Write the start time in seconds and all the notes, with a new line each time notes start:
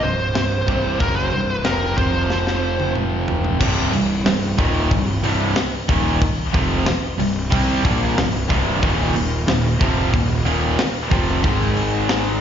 0.02 C1 C2 G2 C5
0.34 C1 C2 G2, snare, open hi-hat
0.66 C1 C2 G2 C3, kick
0.99 F#1 F#2 C#3 F#3 A#4, kick, open hi-hat
1.16 C5
1.32 C1 C2 G2
1.53 B4
1.64 F1 F2 C3 F3 A#4, snare, open hi-hat
1.97 F1 F2 C3 F3 C5, kick
2.30 snare
2.47 snare
2.80 high tom
2.95 mid tom
3.28 floor tom
3.44 floor tom
3.60 C1 C2 G2 C3, kick, crash
3.92 C1 C2 G2, open hi-hat
4.25 C1 C2 G2, snare, open hi-hat
4.58 D#1 D#2 A#2 D#3, kick
4.91 C1 C2 G2, kick, open hi-hat
5.23 C1 C2 G2 C3, open hi-hat
5.56 muted overdriven electric guitar stroke, muted picked electric bass stroke, muted distorted electric guitar stroke, snare, open hi-hat
5.89 D#1 D#2 A#2 D#3, kick, open hi-hat
6.22 kick, open hi-hat
6.53 F1 F2 C3 F3, kick, open hi-hat
6.86 muted overdriven electric guitar stroke, muted distorted electric guitar stroke, muted picked electric bass stroke, snare, open hi-hat
7.19 C1 C2 G2, open hi-hat
7.50 C2 C3 G3 C4, kick, open hi-hat
7.83 A#1 A#2 F3 A#3, kick, open hi-hat
8.16 C1 C2 G2, snare, open hi-hat
8.48 C1 C2 G2 C3, kick, open hi-hat
8.81 D#1 D#2 A#2 D#3 D#4 A#4 F5, kick, open hi-hat
9.14 D#1 D#2 A#2, open hi-hat
9.47 D#1 D#2 A#2, snare, open hi-hat
9.81 F1 F2 C3 F3, kick, open hi-hat
10.13 D#1 D#2 A#2, kick, open hi-hat
10.45 D#1 D#2 A#2 D#3, open hi-hat
10.78 muted distorted electric guitar stroke, muted picked electric bass stroke, muted overdriven electric guitar stroke, snare, open hi-hat
11.11 F1 F2 C3 F3, kick, open hi-hat
11.43 G#1 G#2 D#3 G#3 D#4, kick, open hi-hat
11.77 open hi-hat
12.09 snare, open hi-hat